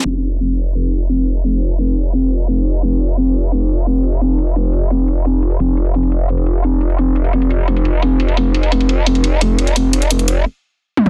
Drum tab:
HH |--xxxxx-xxx-x-xx|x-xxxxx-xxx-x-xx|x-xxxxx-xxx-x-xx|x-xxxxx-xxx-x-xx|
T1 |----------------|----------------|----------------|----------------|
T2 |----------------|----------------|----------------|----------------|

HH |x-xxxxx-xxx-x-xx|x-xxxxx-xxx-x-xx|x-xxxxx-xxx-x-xx|x-xxxxx---------|
T1 |----------------|----------------|----------------|--------------o-|
T2 |----------------|----------------|----------------|---------------o|